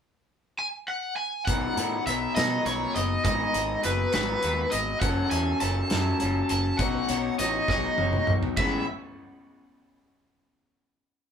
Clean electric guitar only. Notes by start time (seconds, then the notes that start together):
1.47 B2 D#3 F#3 B3 D#4 B4
1.77 F#3 B3 D#4 B4
2.07 F#3 B3 D#4 B4
2.36 B2 D#3 F#3 B3 D#4 B4
2.66 F#3 B3 D#4 B4
3.24 G#2 D#3 F#3 B3 F#4 B4
3.54 F#3 B3 F#4 B4
3.82 F#3 B3 F#4 B4
4.12 G#2 D#3 F#3 B3 F#4 B4
4.42 F#3 B3 F#4 B4
5.01 F#3 C#4 F#4 A4
5.31 C#4 F#4 A4
5.61 F#3 C#4 F#4 A4
5.90 F#3 C#4 F#4 A4
6.20 F#3 C#4 F#4 A4
6.79 B3 D#4 F#4 C#5
7.10 D#4 F#4 C#5
7.39 B3 D#4 F#4 C#5
7.69 B3 D#4 F#4 C#5
7.99 B3 D#4 F#4 C#5
8.58 A2 G#3 B3 C#4 B4